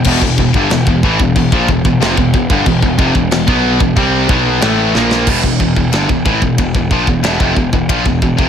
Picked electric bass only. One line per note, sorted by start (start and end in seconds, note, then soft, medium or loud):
0.05 0.21 E1 medium
0.21 0.37 E1 medium
0.38 0.53 E1 medium
0.54 0.69 G1 loud
0.70 0.85 E1 medium
0.87 1.02 E1 medium
1.03 1.18 A1 medium
1.19 1.35 E1 medium
1.36 1.51 E1 medium
1.52 1.67 A#1 medium
1.68 1.84 E1 medium
1.85 1.99 E1 medium
2.00 2.16 F1 loud
2.17 2.33 E1 medium
2.34 2.49 E1 medium
2.50 2.65 G1 medium
2.66 2.81 E1 medium
2.82 2.98 E1 medium
2.98 3.14 F1 medium
3.15 3.30 E1 medium
3.31 3.47 E1 medium
3.48 3.78 B1 medium
3.80 3.96 E1 medium
3.97 4.27 C2 loud
4.29 4.60 B1 loud
4.62 4.93 A1 loud
4.95 5.25 A#1 loud
5.27 5.43 E1 medium
5.43 5.59 E1 medium
5.60 5.75 E1 medium
5.77 5.92 E1 medium
5.93 6.08 G1 medium
6.09 6.25 E1 medium
6.25 6.41 A1 medium
6.42 6.57 E1 medium
6.58 6.73 E1 medium
6.74 6.90 E1 medium
6.91 7.06 A#1 loud
7.07 7.23 E1 medium
7.23 7.39 E1 loud
7.40 7.55 F1 loud
7.56 7.72 E1 medium
7.73 7.88 E1 medium
7.89 8.04 A#1 medium
8.06 8.21 E1 medium
8.22 8.37 E1 medium
8.38 8.49 F1 medium